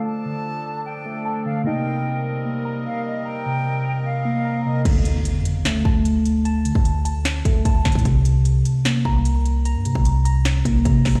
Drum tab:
CC |------------------------------------------------|------------------------------------------------|------------------------------------------------|x-----------------------------------------------|
HH |------------------------------------------------|------------------------------------------------|------------------------------------------------|x-----x-----x-----x-----x-----------x-----x-----|
SD |------------------------------------------------|------------------------------------------------|------------------------------------------------|------------------------o-----------------------|
BD |------------------------------------------------|------------------------------------------------|------------------------------------------------|o-----------------------------o-----------------|

CC |------------------------------------------------|------------------------------------------------|------------------------------------------------|
HH |x-----x-----x-----x-----x-----x-----x-----x-x-x-|x-----x-----x-----x-----x-----------x-----x-----|x-----x-----x-----x-----x-----x-----x-----o-----|
SD |------------------------o-----------------o-----|------------------------o-----------------------|------------------------o-----------------o-----|
BD |---------o--------------------o-----o-----o--o--|o-----------------------------o-----------------|---------o--------------------o-----o-----o--o--|